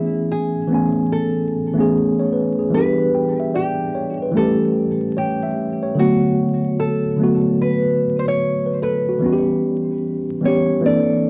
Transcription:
Already playing: tine electric piano E3 A3 B3 C#4 G#4, nylon-string guitar E4
0.31 nylon-string guitar G#4
0.67 tine electric piano E3 A3 B3
0.73 tine electric piano C#4 G#5
1.12 nylon-string guitar A4
1.73 tine electric piano E3 A3 B3
1.79 tine electric piano C#4 G#4
2.19 tine electric piano C#5
2.33 tine electric piano B4
2.59 tine electric piano G#4
2.70 tine electric piano E3 G3 B3
2.74 tine electric piano D4 G4, nylon-string guitar B4
3.15 tine electric piano G5
3.40 tine electric piano E5
3.54 nylon-string guitar G4, tine electric piano D5
3.95 tine electric piano C#5
4.22 tine electric piano B4
4.31 tine electric piano E3 G3 A3
4.37 tine electric piano C#4 G4, nylon-string guitar A4
5.17 nylon-string guitar G4, tine electric piano C#5
5.43 tine electric piano E5
5.83 tine electric piano C#5
5.95 tine electric piano D3 F#3 A3
5.99 tine electric piano B3 F#4, nylon-string guitar F#4
6.80 nylon-string guitar A4
7.16 tine electric piano D3 F#3 A3
7.22 tine electric piano B3 F#4
7.61 nylon-string guitar B4
8.19 nylon-string guitar C5
8.28 nylon-string guitar C#5
8.66 tine electric piano B4
8.82 tine electric piano A4, nylon-string guitar B4
9.09 tine electric piano F#4
9.19 tine electric piano E3 G3 B3
9.24 tine electric piano C#4 F#4
9.32 tine electric piano G4
10.41 tine electric piano E3 G3 B3
10.45 tine electric piano C#4 G4, nylon-string guitar C#5
10.81 tine electric piano E3 A#3 C4
10.86 tine electric piano D4 A4, nylon-string guitar D5

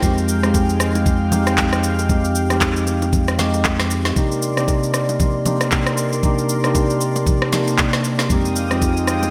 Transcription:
0.02 sub bass F2, tine electric piano G#3 C4 D#4 G4, analog synth pad G#3 F5 G5, kick, low conga, shaker
0.18 shaker
0.28 shaker
0.43 tine electric piano G#3 C4 D#4 G4, cross-stick, shaker
0.54 kick, high bongo, shaker
0.69 shaker
0.80 cross-stick, shaker
0.95 low bongo, shaker
1.06 kick, low conga, shaker
1.31 tine electric piano G#3 C4 D#4 G4, low bongo, low conga, shaker
1.47 cross-stick, high bongo, shaker
1.58 kick, clap, high bongo, shaker
1.73 cross-stick, shaker
1.84 shaker
1.99 high bongo, shaker
2.09 tine electric piano G#3 C4 D#4 G4, kick, low conga, shaker
2.25 shaker
2.35 shaker
2.50 tine electric piano G#3 C4 D#4 G4, cross-stick, low bongo, shaker
2.61 kick, clap, high bongo, shaker
2.76 shaker
2.87 low bongo, shaker
3.02 low bongo, shaker
3.13 kick, low conga, shaker
3.28 cross-stick, shaker
3.38 tine electric piano G#3 C4 D#4 G4, snare, low bongo, low conga, shaker
3.54 high bongo, shaker
3.65 kick, clap, high bongo, shaker
3.80 cross-stick, snare, shaker
3.90 shaker
4.05 cross-stick, snare, high bongo, shaker
4.16 tine electric piano C3 A#3 D4 D#4 G4, analog synth pad A#4 D5 C6, kick, low conga, shaker
4.32 shaker
4.42 shaker
4.57 tine electric piano C3 A#3 D4 D#4 G4, cross-stick, shaker
4.68 kick, high bongo, shaker
4.83 shaker
4.94 cross-stick, shaker
5.09 low bongo, shaker
5.20 kick, low conga, shaker
5.45 tine electric piano C3 A#3 D4 D#4 G4, low bongo, low conga, shaker
5.61 cross-stick, high bongo, shaker
5.72 kick, clap, high bongo, shaker
5.87 cross-stick, shaker
5.97 shaker
6.13 high bongo, shaker
6.23 tine electric piano C3 A#3 D4 D#4 G4, kick, low conga, shaker
6.38 shaker
6.49 shaker
6.64 tine electric piano C3 A#3 D4 D#4 G4, cross-stick, shaker
6.75 kick, high bongo, shaker
6.90 shaker
7.01 shaker
7.16 low bongo, shaker
7.27 kick, low conga, shaker
7.42 cross-stick
7.52 tine electric piano C3 A#3 D4 D#4 G4, snare, low bongo, low conga, shaker
7.68 high bongo, shaker
7.78 kick, clap, high bongo, shaker
7.93 cross-stick, snare, shaker
8.04 shaker
8.19 cross-stick, snare, high bongo, shaker
8.30 tine electric piano F2 G#3 C4 D#4 G4, analog synth pad G#3 F5 G5 D#6, kick, low conga, shaker
8.45 shaker
8.56 shaker
8.71 tine electric piano F2 G#3 C4 D#4 F4, cross-stick, shaker
8.79 tine electric piano G4, kick, high bongo, shaker
8.97 shaker
9.07 cross-stick, shaker
9.23 low bongo, shaker

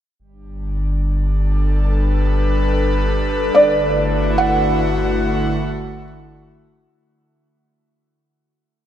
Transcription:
0.19 sub bass G1, analog synth pad G3
0.32 analog synth pad D4
1.26 analog synth pad A4
1.73 analog synth pad B4
3.54 sub bass G1, analog synth pad D3, felt piano D5
3.80 analog synth pad A3 E4
4.01 analog synth pad F#4
4.38 felt piano F#5

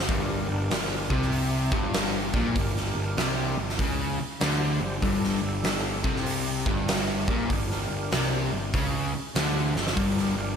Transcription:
0.09 picked electric bass G1, distorted electric guitar G2, tonewheel organ D4 G4 A#4, kick, open hi-hat
0.49 picked electric bass G1, distorted electric guitar G2
0.70 picked electric bass G1, distorted electric guitar G2, snare, open hi-hat
1.10 picked electric bass C2, distorted electric guitar C3, kick
1.22 snare
1.32 open hi-hat
1.72 picked electric bass G1, distorted electric guitar G2, kick
1.94 snare, open hi-hat
2.33 picked electric bass A#1, distorted electric guitar A#2, tonewheel organ D4 G4 A#4, kick
2.55 picked electric bass G1, distorted electric guitar G2, tonewheel organ D4 G4 A#4, kick, open hi-hat
2.76 snare
2.95 picked electric bass G1, distorted electric guitar G2
3.17 picked electric bass C2, distorted electric guitar C3, snare, open hi-hat
3.57 picked electric bass G1, distorted electric guitar G2
3.69 snare
3.79 picked electric bass C#2, distorted electric guitar C#3, kick, open hi-hat
4.19 muted distorted electric guitar stroke, muted picked electric bass stroke
4.41 picked electric bass D2, distorted electric guitar D3, snare, open hi-hat
4.80 picked electric bass G1, distorted electric guitar G2, tonewheel organ D4 G4 C5
5.01 picked electric bass G1, distorted electric guitar G2, tonewheel organ D4 G4 A4, kick, open hi-hat
5.24 snare
5.42 picked electric bass G1, distorted electric guitar G2
5.64 picked electric bass G1, distorted electric guitar G2, snare, open hi-hat
6.03 picked electric bass C2, distorted electric guitar C3, kick
6.16 snare
6.26 open hi-hat
6.66 picked electric bass G1, distorted electric guitar G2, kick
6.88 snare, open hi-hat
7.28 picked electric bass A#1, distorted electric guitar A#2, tonewheel organ D4 G4 A#4, kick
7.50 picked electric bass G1, distorted electric guitar G2, tonewheel organ D4 G4 A#4, kick, open hi-hat
7.71 snare
7.90 picked electric bass G1, distorted electric guitar G2
8.11 picked electric bass C2, distorted electric guitar C3, snare, open hi-hat
8.52 picked electric bass G1, distorted electric guitar G2
8.74 picked electric bass C#2, distorted electric guitar C#3, kick, open hi-hat
9.13 muted distorted electric guitar stroke, muted picked electric bass stroke
9.35 picked electric bass D2, distorted electric guitar D3, snare, open hi-hat
9.74 picked electric bass G1, distorted electric guitar G2, tonewheel organ D4 G4 A4, snare
9.87 snare
9.96 picked electric bass G1, distorted electric guitar G2, tonewheel organ D4 G4 A#4, kick, open hi-hat
10.18 snare
10.37 picked electric bass G1, distorted electric guitar G2

